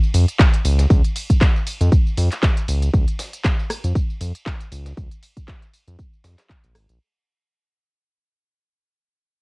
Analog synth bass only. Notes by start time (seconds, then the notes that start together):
0.14 F2
0.65 C#2
0.90 C#2
1.81 F2
2.17 F2
2.68 C#2
2.94 C#2
3.84 F2
4.21 F2
4.72 C#2
4.97 C#2
5.88 F2
6.24 F2
6.64 A#1
6.75 G#1
6.89 A#1